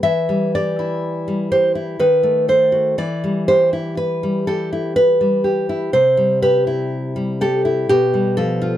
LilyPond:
\new Staff \with { instrumentName = "Nylon-string guitar" } { \time 3/4 \key e \minor \tempo 4 = 62 << { e''8 d''4 c''8 b'8 c''8 | d''8 c''8 b'8 a'8 b'4 | c''8 b'4 a'8 g'8 a'8 | } \\ { e16 g16 g'16 e'8 g16 g'16 e'16 dis16 a16 a'16 fis'16 | e16 g16 g'16 e'8 g16 g'16 e'8 g16 g'16 e'16 | c16 g16 g'16 e'8 g16 g'16 e'16 b,16 g16 f16 f'16 | } >> }